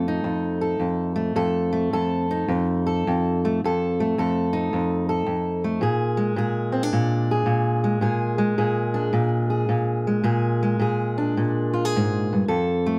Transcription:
Already playing: F2 A3 A4
0.08 D#4
0.24 F2
0.61 A4
0.80 F2
1.16 A3
1.36 F2 A4
1.73 A3
1.93 F2 A4
2.31 D#4
2.48 F2
2.87 A4
3.07 F2
3.45 A3
3.64 F2 A4
4.00 A3
4.18 F2 A4
4.53 D#4
4.73 F2
5.09 A4
5.26 F2
5.64 A3
5.81 A#2 G#4
6.17 G#3
6.36 A#2 G#4
6.72 C4
6.83 D4
6.93 A#2
7.31 G#4
7.46 A#2
7.84 G#3
8.01 A#2 G#4
8.38 G#3
8.58 A#2 G#4
8.94 D4
9.13 A#2
9.50 G#4
9.69 A#2
10.07 G#3
10.24 A#2 G#4
10.63 G#3
10.79 A#2 G#4
11.18 D4
11.37 A#2
11.73 F4
11.85 G#4
11.96 G#2
12.33 G2
12.48 F2 A4
12.86 A3

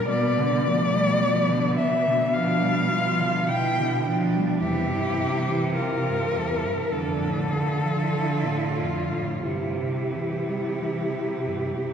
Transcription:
0.09 B2 B3 D5
0.38 D3
0.67 F3 A3
0.95 G3
1.20 F3 B3
1.50 D3
1.77 B2 E5
2.07 D3
2.34 F3 D4 F5
2.62 G3
2.90 F3
2.94 F4
3.21 D3
3.48 B2 E4 G5
3.79 D3
4.06 F3 D4
4.35 G3
4.60 E2 C3 E4 G4
4.92 G2
5.20 C3
5.48 E3
5.75 C3 F4 A#4
6.09 G2
6.36 E2 E4
6.65 G2
6.91 F2 D3 D4 A4
7.23 A2
7.52 D3 F4
7.83 F3
8.15 D3
8.47 A2
8.77 F2 F4
9.13 A2
9.43 G2 C3 E4 G4
9.81 C3
10.14 E3
10.48 G3
10.79 E3
11.13 C3
11.46 G2
11.79 C3

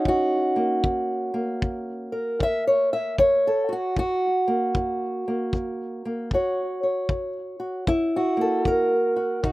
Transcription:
Already playing: C#4 D#4
0.05 F#2 F#4, kick
0.56 A#3
0.84 F#2, kick
1.34 A#3
1.62 F#2, kick
2.12 A#4
2.39 F#2 E5, kick
2.67 C#5
2.93 E5
3.18 F#2 C#5, kick
3.47 A4
3.69 F#4
3.96 F#2 F#4, kick
4.48 A#3
4.75 F#2, kick
5.28 A#3
5.53 F#2, kick
6.05 A#3
6.31 F#2 F#4 C#5, kick
6.83 C#5
7.09 F#2, kick
7.60 F#4
7.87 F#2 E4, kick
8.16 F#4
8.37 A#3
8.41 A4
8.65 F#2 A#4, kick
9.16 F#4
9.43 B2 D#4 F#4, kick

